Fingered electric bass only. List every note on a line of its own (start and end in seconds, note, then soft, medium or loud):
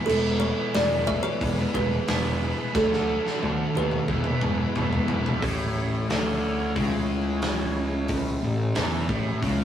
0.08 0.51 E1 loud
0.75 1.17 E1 loud
1.41 1.63 E1 medium
1.75 1.96 E1 medium
2.08 2.51 E1 medium
2.74 3.17 D2 medium
3.43 3.64 D2 medium
3.77 3.97 D#2 medium
4.09 4.30 E1 medium
4.42 4.63 E1 medium
4.78 4.98 E1 medium
5.09 5.30 E1 medium
5.43 6.05 A1 loud
6.10 6.73 D2 medium
6.76 8.39 C#2 medium
8.44 8.74 A1 medium
8.77 9.08 E2 loud
9.09 9.40 A1 loud
9.43 9.64 C#2 medium